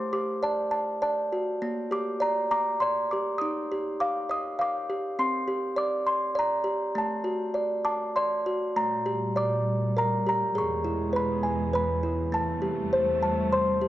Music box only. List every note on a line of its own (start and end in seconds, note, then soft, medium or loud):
0.00 1.01 A3 medium
0.00 0.12 D6 medium
0.13 1.02 G4 medium
0.13 0.26 D6 medium
0.43 1.01 D5 medium
0.43 0.70 A5 medium
0.71 1.01 A5 medium
1.02 1.62 D5 medium
1.02 1.44 A5 medium
1.32 1.62 F#4 medium
1.62 2.82 A#3 medium
1.91 3.12 G4 medium
1.91 2.23 D6 medium
2.20 2.81 D5 medium
2.20 2.50 A#5 medium
2.51 3.41 A#5 medium
2.51 2.83 D6 medium
2.80 3.42 D5 medium
2.80 3.09 C6 medium
3.11 3.42 G4 medium
3.11 3.42 D6 medium
3.38 4.60 D#4 medium
3.38 4.01 D#6 medium
3.72 4.88 G4 medium
4.00 4.58 F5 medium
4.00 4.31 D6 medium
4.29 5.19 D#5 medium
4.29 4.61 D#6 medium
4.59 5.19 F5 medium
4.59 5.16 D6 medium
4.90 5.19 G4 medium
5.19 6.37 C4 medium
5.19 5.80 C6 medium
5.48 6.63 G4 medium
5.76 6.34 D5 medium
5.76 6.39 D6 medium
6.07 6.95 C6 medium
6.35 6.95 D5 medium
6.35 6.99 A#5 medium
6.64 6.95 G4 medium
6.95 8.16 A3 medium
6.95 7.84 A5 medium
7.24 8.45 F#4 medium
7.54 8.15 D5 medium
7.85 8.77 A5 medium
7.85 8.17 D6 medium
8.16 8.77 D5 medium
8.16 8.79 C6 medium
8.46 8.77 F#4 medium
8.76 9.96 A3 medium
8.76 9.33 A#5 medium
9.06 10.25 G4 medium
9.36 10.56 D5 medium
9.36 9.93 D6 medium
9.97 10.56 A#4 medium
9.97 10.25 A#5 medium
10.27 10.56 G4 medium
10.27 10.42 A#5 medium
10.55 11.74 G#4 medium
10.55 11.18 C#6 medium
10.85 12.02 E4 medium
11.13 11.72 B4 medium
11.13 11.71 B5 medium
11.43 12.33 G#5 medium
11.73 12.33 B4 medium
11.73 12.16 B5 medium
12.03 12.33 E4 medium
12.32 13.51 A3 medium
12.32 13.21 A5 medium
12.62 13.80 G4 medium
12.93 13.51 C5 medium
13.23 13.88 A5 medium
13.52 13.88 C5 medium
13.52 13.88 C6 medium
13.81 13.88 G4 medium